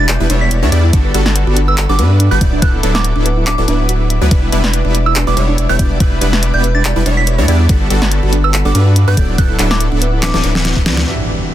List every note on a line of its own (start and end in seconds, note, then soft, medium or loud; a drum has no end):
0.00 0.18 E1 loud
0.00 0.17 G3 medium
0.00 0.17 B3 medium
0.00 0.17 D4 medium
0.00 0.17 E4 medium
0.00 0.17 B4 loud
0.00 0.90 B4 medium
0.00 2.37 D5 medium
0.00 0.90 E5 medium
0.00 0.89 D6 medium
0.09 0.19 D5 medium
0.09 clap loud
0.09 closed hi-hat medium
0.20 0.28 E1 loud
0.20 0.28 G3 medium
0.20 0.28 B3 medium
0.20 0.28 D4 medium
0.20 0.26 E4 medium
0.20 0.28 E4 medium
0.20 0.28 B4 loud
0.30 0.64 E1 loud
0.30 0.60 G3 medium
0.30 0.60 B3 medium
0.30 0.37 D4 medium
0.30 0.60 D4 medium
0.30 0.60 E4 medium
0.30 0.60 C#5 medium
0.30 closed hi-hat medium
0.41 0.45 D5 medium
0.41 0.72 B6 medium
0.51 closed hi-hat medium
0.62 0.70 E2 loud
0.62 0.70 G3 loud
0.62 0.70 B3 medium
0.62 0.66 D4 loud
0.62 0.70 D4 loud
0.62 0.70 E4 medium
0.62 0.70 C#5 loud
0.72 0.91 E2 loud
0.72 0.91 G3 loud
0.72 0.91 B3 loud
0.72 0.91 D4 medium
0.72 0.91 E4 medium
0.72 0.83 D5 medium
0.72 0.91 D5 loud
0.72 closed hi-hat medium
0.83 0.89 E4 medium
0.93 1.12 G1 loud
0.93 1.12 G3 loud
0.93 1.12 B3 medium
0.93 1.00 D4 medium
0.93 1.12 D4 loud
0.93 1.12 F#4 loud
0.93 1.12 A4 loud
0.93 2.40 A4 medium
0.93 4.28 F#5 medium
0.93 2.40 B5 medium
0.93 kick loud
0.93 closed hi-hat medium
1.05 1.08 B4 medium
1.14 1.45 G1 loud
1.14 1.44 G3 loud
1.14 1.44 B3 loud
1.14 1.44 D4 loud
1.14 1.44 F#4 medium
1.14 1.44 A4 loud
1.14 closed hi-hat medium
1.26 1.29 D4 loud
1.26 snare medium
1.35 1.46 B4 medium
1.35 closed hi-hat medium
1.47 1.87 G1 loud
1.47 1.87 G3 medium
1.47 1.87 B3 medium
1.47 1.87 D4 medium
1.47 1.53 F#4 medium
1.47 1.87 F#4 medium
1.47 1.87 A4 loud
1.57 1.64 D4 medium
1.57 closed hi-hat medium
1.68 1.72 B4 medium
1.68 1.77 E6 loud
1.78 clap loud
1.78 closed hi-hat medium
1.89 2.00 G1 loud
1.89 1.97 G3 medium
1.89 1.97 B3 medium
1.89 1.93 D4 loud
1.89 1.97 D4 medium
1.89 1.97 F#4 medium
1.89 1.97 A4 loud
1.89 1.98 D6 medium
1.99 2.29 G2 loud
1.99 2.29 G3 medium
1.99 2.29 B3 medium
1.99 2.29 D4 medium
1.99 2.29 F#4 medium
1.99 2.29 B4 medium
1.99 2.09 B4 medium
1.99 closed hi-hat medium
2.10 2.16 F#4 medium
2.20 2.27 D4 medium
2.20 closed hi-hat medium
2.31 2.39 G1 loud
2.31 2.39 G3 loud
2.31 2.39 B3 medium
2.31 2.39 D4 medium
2.31 2.39 F#4 medium
2.31 2.35 B4 medium
2.31 2.39 B4 loud
2.31 2.40 G6 loud
2.41 2.60 D1 loud
2.41 2.60 F#3 loud
2.41 2.60 B3 medium
2.41 2.60 D4 medium
2.41 2.60 E4 loud
2.41 7.65 B4 medium
2.41 2.60 D5 loud
2.41 7.65 E5 medium
2.41 4.29 D6 medium
2.41 kick medium
2.41 closed hi-hat medium
2.52 2.56 D4 loud
2.62 2.81 D1 loud
2.62 2.81 F#3 loud
2.62 2.81 B3 loud
2.62 2.81 D4 loud
2.62 2.81 E4 loud
2.62 2.81 A4 loud
2.62 2.73 B4 medium
2.62 2.73 F#6 medium
2.62 kick loud
2.62 closed hi-hat medium
2.73 2.79 E4 medium
2.83 3.14 D1 loud
2.83 3.13 F#3 loud
2.83 3.13 B3 loud
2.83 2.90 D4 medium
2.83 3.13 D4 medium
2.83 3.13 E4 medium
2.83 3.13 A4 loud
2.83 closed hi-hat medium
2.95 2.98 B4 medium
2.95 3.04 D6 medium
2.95 snare medium
3.04 closed hi-hat medium
3.16 3.56 D1 loud
3.16 3.55 F#3 medium
3.16 3.55 B3 medium
3.16 3.19 D4 loud
3.16 3.55 D4 medium
3.16 3.55 E4 medium
3.16 3.55 A4 loud
3.25 3.36 B4 medium
3.25 closed hi-hat medium
3.37 3.43 E4 medium
3.47 3.54 D4 medium
3.47 3.54 D6 medium
3.47 clap loud
3.47 closed hi-hat medium
3.58 3.66 D1 loud
3.58 3.66 F#3 medium
3.58 3.66 B3 medium
3.58 3.66 D4 medium
3.58 3.66 E4 medium
3.58 3.66 A4 loud
3.58 3.62 B4 medium
3.58 3.64 D6 medium
3.68 4.19 D1 loud
3.68 4.19 F#3 medium
3.68 4.19 B3 medium
3.68 4.19 D4 medium
3.68 3.78 D4 loud
3.68 4.19 E4 medium
3.68 4.19 B4 medium
3.68 closed hi-hat medium
3.79 3.85 E4 medium
3.89 3.99 F#4 medium
3.89 closed hi-hat medium
4.10 4.17 E5 medium
4.10 closed hi-hat medium
4.21 4.29 D2 loud
4.21 4.29 F#3 loud
4.21 4.29 B3 loud
4.21 4.29 D4 medium
4.21 4.29 E4 medium
4.21 4.29 B4 loud
4.21 4.30 D5 loud
4.31 4.51 E1 loud
4.31 4.50 G3 loud
4.31 4.50 B3 medium
4.31 4.50 D4 loud
4.31 4.50 B4 loud
4.31 4.42 D5 medium
4.31 9.13 D5 medium
4.31 7.66 D6 medium
4.31 kick loud
4.31 closed hi-hat medium
4.43 4.49 E4 medium
4.52 4.83 E1 loud
4.52 4.82 G3 loud
4.52 4.82 B3 medium
4.52 4.59 D4 medium
4.52 4.82 D4 loud
4.52 4.82 E4 medium
4.52 4.82 B4 loud
4.52 closed hi-hat medium
4.64 4.67 D5 medium
4.64 snare medium
4.73 4.84 B4 medium
4.73 closed hi-hat medium
4.85 5.25 E1 medium
4.85 5.24 G3 medium
4.85 5.24 B3 medium
4.85 5.24 D4 medium
4.85 4.88 D4 loud
4.85 5.24 E4 medium
4.85 5.24 B4 loud
4.95 5.05 D5 medium
4.95 closed hi-hat medium
5.06 5.12 E4 medium
5.06 5.15 E6 loud
5.16 5.23 D4 medium
5.16 clap loud
5.16 closed hi-hat medium
5.27 5.35 E1 medium
5.27 5.34 G3 medium
5.27 5.35 B3 medium
5.27 5.35 D4 medium
5.27 5.34 E4 medium
5.27 5.34 B4 loud
5.27 5.31 D5 medium
5.27 5.36 D6 medium
5.37 5.67 E1 loud
5.37 5.67 G3 medium
5.37 5.67 B3 medium
5.37 5.67 D4 medium
5.37 5.67 E4 medium
5.37 5.47 B4 medium
5.37 5.67 C#5 medium
5.37 closed hi-hat medium
5.48 5.52 D4 loud
5.58 5.68 D5 medium
5.58 closed hi-hat medium
5.69 5.77 E1 loud
5.69 5.77 G3 loud
5.69 5.77 B3 medium
5.69 5.77 D4 medium
5.69 5.77 E4 medium
5.69 5.75 E4 medium
5.69 5.77 C#5 loud
5.69 5.79 G6 medium
5.79 5.98 E1 loud
5.79 5.98 G3 loud
5.79 5.98 B3 medium
5.79 5.86 D4 medium
5.79 5.98 D4 medium
5.79 5.98 E4 loud
5.79 5.98 D5 loud
5.79 kick medium
5.79 closed hi-hat medium
5.90 5.94 D5 medium
6.00 6.20 E1 loud
6.00 6.19 G3 loud
6.00 6.19 B3 medium
6.00 6.19 D4 medium
6.00 6.19 E4 medium
6.00 6.11 B4 medium
6.00 6.19 B4 loud
6.00 kick loud
6.00 closed hi-hat medium
6.12 6.15 D4 loud
6.21 6.52 E1 loud
6.21 6.51 G3 loud
6.21 6.51 B3 medium
6.21 6.51 D4 medium
6.21 6.51 E4 loud
6.21 6.51 B4 loud
6.21 6.32 D5 medium
6.21 closed hi-hat medium
6.33 6.39 E4 medium
6.33 snare medium
6.42 6.49 D4 medium
6.42 closed hi-hat medium
6.54 6.94 E1 loud
6.54 6.93 G3 medium
6.54 6.93 B3 medium
6.54 6.93 D4 medium
6.54 6.93 E4 medium
6.54 6.93 B4 loud
6.54 6.58 D5 medium
6.54 6.63 G6 medium
6.63 6.74 B4 medium
6.63 closed hi-hat medium
6.75 6.79 D4 loud
6.75 6.84 A6 loud
6.85 6.95 D5 medium
6.85 clap loud
6.85 closed hi-hat medium
6.96 7.04 E1 loud
6.96 7.03 G3 medium
6.96 7.04 B3 medium
6.96 7.04 D4 medium
6.96 7.03 E4 medium
6.96 7.02 E4 medium
6.96 7.04 B4 loud
7.06 7.40 E1 loud
7.06 7.36 G3 medium
7.06 7.36 B3 medium
7.06 7.13 D4 medium
7.06 7.36 D4 medium
7.06 7.36 E4 medium
7.06 7.36 C#5 medium
7.06 closed hi-hat medium
7.17 7.21 D5 medium
7.17 7.48 B6 medium
7.27 7.38 B4 medium
7.27 closed hi-hat medium
7.38 7.46 E2 loud
7.38 7.46 G3 loud
7.38 7.46 B3 medium
7.38 7.42 D4 loud
7.38 7.46 D4 loud
7.38 7.46 E4 loud
7.38 7.46 C#5 loud
7.48 7.67 E2 loud
7.48 7.67 G3 loud
7.48 7.67 B3 medium
7.48 7.67 D4 medium
7.48 7.67 E4 medium
7.48 7.59 D5 medium
7.48 7.67 D5 loud
7.48 closed hi-hat medium
7.60 7.66 E4 medium
7.69 7.89 G1 loud
7.69 7.88 G3 loud
7.69 7.88 B3 medium
7.69 7.76 D4 medium
7.69 7.88 D4 loud
7.69 7.88 F#4 loud
7.69 7.88 A4 loud
7.69 9.16 A4 medium
7.69 11.04 F#5 medium
7.69 9.16 B5 medium
7.69 kick loud
7.69 closed hi-hat medium
7.81 7.84 B4 medium
7.90 8.21 G1 loud
7.90 8.20 G3 loud
7.90 8.20 B3 medium
7.90 8.20 D4 loud
7.90 8.20 F#4 medium
7.90 8.01 A4 medium
7.90 8.20 A4 loud
7.90 closed hi-hat medium
8.02 8.05 D4 loud
8.02 snare medium
8.11 8.22 B4 medium
8.11 closed hi-hat medium
8.23 8.63 G1 loud
8.23 8.63 G3 medium
8.23 8.63 B3 medium
8.23 8.63 D4 medium
8.23 8.29 F#4 medium
8.23 8.63 F#4 medium
8.23 8.63 A4 loud
8.33 8.40 D4 medium
8.33 closed hi-hat medium
8.44 8.48 B4 medium
8.44 8.53 E6 loud
8.54 8.64 A4 medium
8.54 clap loud
8.54 closed hi-hat medium
8.65 8.73 G1 loud
8.65 8.73 G3 medium
8.65 8.73 B3 medium
8.65 8.73 D4 medium
8.65 8.69 D4 loud
8.65 8.73 F#4 medium
8.65 8.73 A4 loud
8.65 8.75 D6 loud
8.75 9.05 G2 loud
8.75 9.05 G3 medium
8.75 9.05 B3 medium
8.75 9.05 D4 medium
8.75 9.05 F#4 medium
8.75 8.85 B4 medium
8.75 9.05 B4 medium
8.75 closed hi-hat medium
8.86 8.92 F#4 medium
8.96 9.03 D4 medium
8.96 closed hi-hat medium
9.07 9.15 G2 loud
9.07 9.15 G3 loud
9.07 9.15 B3 medium
9.07 9.15 D4 medium
9.07 9.15 F#4 medium
9.07 9.11 B4 medium
9.07 9.15 B4 loud
9.07 9.17 G6 medium
9.17 9.36 D1 loud
9.17 9.36 F#3 loud
9.17 9.36 B3 loud
9.17 9.36 D4 medium
9.17 9.36 E4 medium
9.17 9.28 A4 medium
9.17 11.05 B4 medium
9.17 9.36 D5 loud
9.17 11.05 E5 medium
9.17 11.06 D6 medium
9.17 kick medium
9.17 closed hi-hat medium
9.29 9.32 D4 loud
9.38 9.58 D1 loud
9.38 9.57 F#3 loud
9.38 9.57 B3 loud
9.38 9.57 D4 medium
9.38 9.57 E4 loud
9.38 9.57 A4 loud
9.38 9.49 B4 medium
9.38 9.49 F#6 loud
9.38 kick loud
9.38 closed hi-hat medium
9.50 9.56 E4 medium
9.59 9.90 D1 loud
9.59 9.89 F#3 loud
9.59 9.89 B3 loud
9.59 9.89 D4 loud
9.59 9.66 D4 medium
9.59 9.89 E4 loud
9.59 9.89 A4 loud
9.59 clap medium
9.59 closed hi-hat medium
9.71 9.74 B4 medium
9.71 9.80 D6 medium
9.71 snare medium
9.80 9.91 A4 medium
9.80 closed hi-hat medium
9.92 10.32 D1 medium
9.92 10.31 F#3 medium
9.92 10.31 B3 medium
9.92 10.31 D4 medium
9.92 9.96 D4 loud
9.92 10.31 E4 medium
9.92 10.31 A4 loud
10.02 10.12 B4 medium
10.02 closed hi-hat medium
10.13 10.19 E4 medium
10.23 10.30 D4 medium
10.23 10.30 D6 medium
10.23 snare medium
10.23 clap loud
10.23 closed hi-hat medium
10.34 10.42 D1 loud
10.34 10.42 F#3 medium
10.34 10.42 B3 medium
10.34 10.42 D4 medium
10.34 10.42 E4 medium
10.34 10.42 A4 loud
10.34 10.38 B4 medium
10.34 10.41 D6 medium
10.34 snare medium
10.44 10.74 D1 loud
10.44 10.74 F#3 medium
10.44 10.74 B3 medium
10.44 10.74 D4 medium
10.44 10.48 D4 medium
10.44 10.74 E4 medium
10.44 10.74 B4 medium
10.44 closed hi-hat medium
10.55 10.61 A4 medium
10.55 snare medium
10.65 10.69 E4 medium
10.65 snare medium
10.65 closed hi-hat medium
10.76 10.88 D1 loud
10.76 10.84 F#3 loud
10.76 10.84 B3 medium
10.76 10.84 D4 medium
10.76 10.84 E4 medium
10.76 10.84 B4 loud
10.76 kick medium
10.86 11.05 D2 loud
10.86 11.05 F#3 loud
10.86 11.05 B3 medium
10.86 11.05 D4 medium
10.86 10.90 D4 medium
10.86 11.05 E4 loud
10.86 11.05 D5 loud
10.86 snare loud
10.86 closed hi-hat medium
10.97 11.04 E4 medium
10.97 snare medium
11.05 11.54 E2 medium
11.05 11.54 E3 medium
11.05 11.54 G3 medium
11.05 11.54 D4 medium
11.05 11.54 F#4 medium
11.05 11.54 G4 medium
11.05 11.54 D5 medium
11.05 impact medium
11.09 11.54 E5 medium